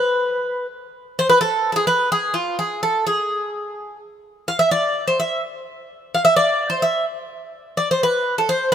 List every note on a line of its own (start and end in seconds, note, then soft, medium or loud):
0.00 0.65 B4 medium
1.19 1.29 C5 loud
1.29 1.40 B4 loud
1.41 1.71 A4 medium
1.72 1.87 G#4 medium
1.72 1.75 A4 medium
1.87 2.09 B4 medium
2.12 2.33 G#4 medium
2.34 2.56 F4 medium
2.59 2.82 G#4 medium
2.83 3.06 A4 medium
3.07 3.96 G#4 medium
4.48 4.58 F5 medium
4.59 4.71 E5 medium
4.71 5.04 D5 medium
5.08 5.18 C5 medium
5.20 5.40 E5 medium
6.15 6.24 F5 medium
6.25 6.35 E5 medium
6.36 6.69 D5 medium
6.70 6.81 C5 medium
6.82 7.04 E5 medium
7.77 7.88 D5 medium
7.91 8.02 C5 medium
8.03 8.35 B4 medium
8.38 8.48 A4 medium
8.49 8.70 C5 medium